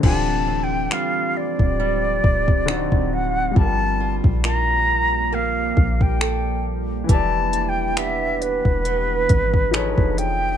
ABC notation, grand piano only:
X:1
M:4/4
L:1/8
Q:"Swing 16ths" 1/4=68
K:Dm
V:1 name="Grand piano"
[D,CDFG]6 [D,C_E^F]2 | [G,FGB]8 | [E,EGd]6 [F,_E^GA^c]2 |]